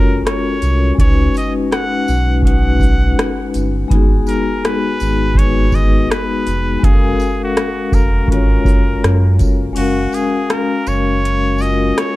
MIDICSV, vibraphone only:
0, 0, Header, 1, 2, 480
1, 0, Start_track
1, 0, Key_signature, 6, "major"
1, 0, Tempo, 731707
1, 644, Time_signature, 4, 2, 24, 8
1, 7977, End_track
2, 0, Start_track
2, 0, Title_t, "Vibraphone"
2, 0, Program_c, 0, 11
2, 0, Control_c, 0, 64, 127
2, 0, Note_on_c, 0, 56, 66
2, 0, Note_on_c, 0, 61, 64
2, 0, Note_on_c, 0, 65, 59
2, 0, Note_on_c, 0, 66, 61
2, 0, Note_on_c, 0, 70, 98
2, 0, Note_on_c, 0, 73, 76
2, 438, Note_off_c, 0, 56, 0
2, 444, Note_off_c, 0, 61, 0
2, 450, Note_off_c, 0, 65, 0
2, 456, Note_off_c, 0, 66, 0
2, 462, Note_off_c, 0, 73, 0
2, 622, Note_on_c, 0, 56, 71
2, 632, Note_on_c, 0, 61, 72
2, 645, Note_on_c, 0, 63, 72
2, 654, Control_c, 0, 64, 0
2, 657, Note_on_c, 0, 66, 64
2, 660, Note_off_c, 0, 70, 0
2, 669, Note_on_c, 0, 71, 82
2, 776, Control_c, 0, 64, 127
2, 1399, Note_off_c, 0, 56, 0
2, 1404, Note_off_c, 0, 61, 0
2, 1410, Note_off_c, 0, 63, 0
2, 1416, Note_off_c, 0, 66, 0
2, 1422, Note_off_c, 0, 71, 0
2, 1583, Note_on_c, 0, 56, 64
2, 1595, Note_on_c, 0, 61, 59
2, 1607, Note_on_c, 0, 63, 65
2, 1619, Note_on_c, 0, 66, 60
2, 1630, Note_on_c, 0, 71, 73
2, 2359, Note_off_c, 0, 56, 0
2, 2365, Note_off_c, 0, 61, 0
2, 2371, Note_off_c, 0, 63, 0
2, 2377, Note_off_c, 0, 66, 0
2, 2383, Note_off_c, 0, 71, 0
2, 2545, Note_on_c, 0, 56, 87
2, 2557, Note_on_c, 0, 59, 82
2, 2567, Note_on_c, 0, 63, 82
2, 2571, Control_c, 0, 64, 0
2, 2580, Note_on_c, 0, 66, 82
2, 2592, Note_on_c, 0, 68, 94
2, 2679, Control_c, 0, 64, 127
2, 3320, Note_off_c, 0, 56, 0
2, 3326, Note_off_c, 0, 59, 0
2, 3331, Note_off_c, 0, 63, 0
2, 3337, Note_off_c, 0, 66, 0
2, 3343, Note_off_c, 0, 68, 0
2, 3502, Note_on_c, 0, 56, 67
2, 3514, Note_on_c, 0, 59, 62
2, 3523, Note_on_c, 0, 63, 65
2, 3537, Note_on_c, 0, 66, 67
2, 3547, Note_on_c, 0, 71, 73
2, 4278, Note_off_c, 0, 56, 0
2, 4284, Note_off_c, 0, 59, 0
2, 4289, Note_off_c, 0, 63, 0
2, 4296, Note_off_c, 0, 66, 0
2, 4301, Note_off_c, 0, 71, 0
2, 4458, Note_on_c, 0, 56, 76
2, 4470, Note_on_c, 0, 61, 65
2, 4482, Note_on_c, 0, 77, 66
2, 4493, Control_c, 0, 64, 0
2, 4493, Note_on_c, 0, 66, 71
2, 4505, Note_on_c, 0, 69, 69
2, 4549, Note_off_c, 0, 69, 0
2, 4549, Note_on_c, 0, 70, 82
2, 4617, Control_c, 0, 64, 127
2, 5236, Note_off_c, 0, 56, 0
2, 5242, Note_off_c, 0, 61, 0
2, 5248, Note_off_c, 0, 77, 0
2, 5254, Note_off_c, 0, 66, 0
2, 5282, Note_off_c, 0, 70, 0
2, 5418, Note_on_c, 0, 56, 68
2, 5430, Note_on_c, 0, 61, 63
2, 5443, Note_on_c, 0, 65, 60
2, 5453, Note_on_c, 0, 66, 62
2, 5466, Note_on_c, 0, 73, 74
2, 6196, Note_off_c, 0, 56, 0
2, 6202, Note_off_c, 0, 61, 0
2, 6209, Note_off_c, 0, 65, 0
2, 6214, Note_off_c, 0, 66, 0
2, 6220, Note_off_c, 0, 73, 0
2, 6384, Note_on_c, 0, 56, 74
2, 6395, Note_on_c, 0, 61, 74
2, 6406, Note_on_c, 0, 77, 65
2, 6413, Control_c, 0, 64, 0
2, 6419, Note_on_c, 0, 66, 65
2, 6429, Note_on_c, 0, 70, 83
2, 6528, Control_c, 0, 64, 127
2, 7159, Note_off_c, 0, 56, 0
2, 7165, Note_off_c, 0, 61, 0
2, 7170, Note_off_c, 0, 77, 0
2, 7177, Note_off_c, 0, 66, 0
2, 7182, Note_off_c, 0, 70, 0
2, 7587, Note_on_c, 0, 56, 65
2, 7599, Note_on_c, 0, 61, 56
2, 7611, Note_on_c, 0, 65, 64
2, 7621, Note_on_c, 0, 66, 58
2, 7634, Note_on_c, 0, 70, 69
2, 7977, Note_off_c, 0, 56, 0
2, 7977, Note_off_c, 0, 61, 0
2, 7977, Note_off_c, 0, 65, 0
2, 7977, Note_off_c, 0, 66, 0
2, 7977, Note_off_c, 0, 70, 0
2, 7977, End_track
0, 0, End_of_file